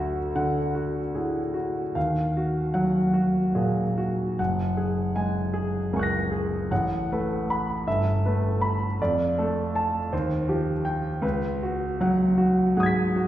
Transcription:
Already playing: D2 F#4 E5
0.36 D3 F#5
0.75 F#4
1.15 A2 G#4
1.54 F#4
1.95 D#2 F5
2.37 F#4
2.74 F#3 F#5
3.14 F#4
3.55 A#2 G#4
3.98 F#4
4.39 F#1 F#5
4.77 G#4
5.16 G#3 G#5
5.54 G#4
5.93 C#2 A#4 G#5 C#6
5.99 F#6 A#6
6.32 G#4
6.71 A1 F#5
7.12 A3 B4
7.50 B5
7.87 G1 E5
8.26 A3 B4
8.62 B5
9.02 F2 D5
9.38 A3 A4
9.76 A5
10.13 D#2 C5
10.48 F3 G4
10.85 G5
11.22 C#2 B4
11.63 F#4
12.01 F#3 F#5
12.38 F#4
12.77 G#2 G#4 F#5 D#6
12.83 G#6 B6
13.16 F#4

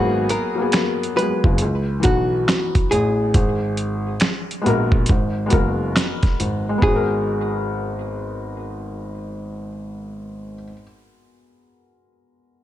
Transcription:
Already playing: G#1 F#3 A#3 B3 F#4 G#4
0.29 A#4, closed hi-hat
0.55 F#3 A#3
0.59 B3 G#4
0.72 finger snap, snare, closed hi-hat
1.03 closed hi-hat
1.15 F#3 G#3 B4, closed hi-hat
1.20 B3 G#4
1.44 F#1, kick
1.58 C#2, closed hi-hat
2.00 E3 B3 F#4, closed hi-hat
2.04 B1 D#4 F#4, kick
2.48 finger snap, snare, closed hi-hat
2.75 kick, closed hi-hat
2.91 A1 G#4, closed hi-hat
3.34 G#1, kick, closed hi-hat
3.77 closed hi-hat
4.20 finger snap, snare, closed hi-hat
4.51 closed hi-hat
4.62 G#3 B3
4.66 A#1 F#4 A#4, closed hi-hat
4.92 kick
5.06 G#1, kick, closed hi-hat
5.46 G#3 B3
5.50 F#1 F#4 A#4, kick, closed hi-hat
5.96 finger snap, snare, closed hi-hat
6.23 kick, snare, closed hi-hat
6.40 G#1, closed hi-hat
6.69 G#3
6.78 B3
6.82 G#1 G#4, kick
6.87 F#4
6.96 A#4

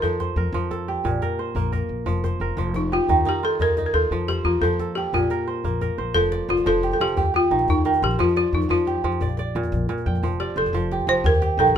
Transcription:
Already playing: D#4 F4 G4
0.02 F2 F3 A4, djembe bass
0.20 C5, djembe slap, djembe tone
0.36 F2 A#4
0.53 F2 F3, djembe bass
0.71 A4, djembe slap, djembe tone
0.88 G4
1.04 A#1 A#2, djembe bass
1.22 A#4, djembe slap, djembe tone
1.39 C5, djembe slap
1.55 A#1 A#3, djembe bass
1.72 A#4, djembe slap, djembe tone
1.89 A#1
2.06 F1 F3, djembe bass
2.24 C5, djembe slap, djembe tone
2.40 F1 A#4
2.57 F1 F3, djembe bass
2.74 D#4, djembe slap, djembe tone
2.92 F4 G4
3.08 D#2 D#3, djembe bass
3.25 D#4 G4, djembe slap, djembe tone
3.43 F4 A4
3.59 D#2 D#4 A#4, djembe bass
3.77 D#4, djembe slap, djembe tone
3.86 A#4
3.94 D#2 F4 A4
4.11 F2 F3, djembe slap, djembe bass
4.28 G4 C5, djembe slap, djembe tone
4.45 F2 A#3 F4
4.61 F2 F3 A4, djembe bass
4.79 A4, djembe slap, djembe tone
4.95 G4, djembe slap
5.05 djembe slap
5.13 A#1 A#2 F4, djembe bass
5.30 A#4, djembe slap, djembe tone
5.39 djembe slap
5.47 C5, djembe slap
5.56 djembe slap
5.64 A#1 A#3, djembe bass
5.81 A#4, djembe slap, djembe tone
5.98 A#1 C5
6.14 F1 F3 A4, djembe bass
6.24 djembe tone
6.32 D5, djembe slap
6.49 F1 F4 C5
6.57 djembe slap, djembe tone
6.66 F1 F3 A4, djembe bass
6.83 G4, djembe slap
6.91 A4, djembe tone
7.00 F1 F3 G4
7.08 djembe slap
7.16 D#2 G4, djembe bass
7.25 djembe slap, djembe tone
7.34 F4 G4
7.51 A#1 D#3
7.59 djembe slap
7.68 D#2 D#4, djembe bass
7.85 D#3, djembe slap
7.93 djembe tone
8.02 A#1 G4 C5
8.11 djembe slap
8.19 F2 F3 F4, djembe bass
8.29 djembe tone
8.36 F4 D5, djembe slap
8.53 F2 D#4
8.62 djembe slap, djembe tone
8.69 F2 F3 F4, djembe bass
8.87 G4, djembe slap
9.04 F2 F3
9.12 djembe slap
9.20 A#1 D5, djembe bass
9.29 djembe tone
9.37 D5, djembe slap
9.55 F2 A#2
9.63 djembe slap, djembe tone
9.72 A#1, djembe bass
9.89 A#2, djembe slap
9.98 djembe tone
10.06 F2 G5
10.15 djembe slap
10.23 F1 F3, djembe bass
10.32 djembe tone
10.40 G4 D5, djembe slap
10.56 F1 A4 C5
10.66 djembe slap, djembe tone
10.73 F1 F3, djembe bass
10.91 G4, djembe slap
10.99 djembe tone
11.07 F1 F3 C5
11.16 djembe slap
11.24 D#2 G4 A#4, djembe bass
11.34 djembe slap, djembe tone
11.42 G4, djembe slap
11.57 A#1 D#3 A4
11.68 djembe slap, djembe tone
11.75 D#2

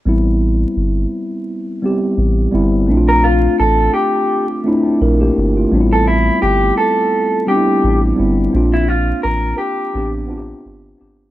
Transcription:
0.05 A1 G3 B3 C4 E4
0.76 G1
1.82 G3 B3 C4 G4
2.17 A1
2.51 G1 G3 B3 C4 E4
2.87 A#1 A3 C4 D4
2.91 E4
2.97 F4
3.09 A#4
3.24 F4
3.60 A1 A4
3.94 G4
4.64 A3 C4 D4 E4
5.01 A#1 D4 A#4
5.21 A#3 G4
5.37 G1
5.57 A3 F4
5.71 A1 G3 B3 C4 D4
5.81 E4
5.93 A4
6.07 E4
6.42 G1 G4
6.78 A4
7.47 G3 B3 C4 D4 G4
7.57 E4
7.84 A1
8.16 G1 G3 B3 C4 E4
8.53 A#1 A#3 C4 D4 F4
8.74 E4
8.88 F4
9.23 A1 A#4
9.58 G4
9.94 A1 B3 C4 D4 G4
10.27 B3 C4 D4 F4
10.37 G4
10.65 G1
10.97 G1 B3 C4 D4 G4

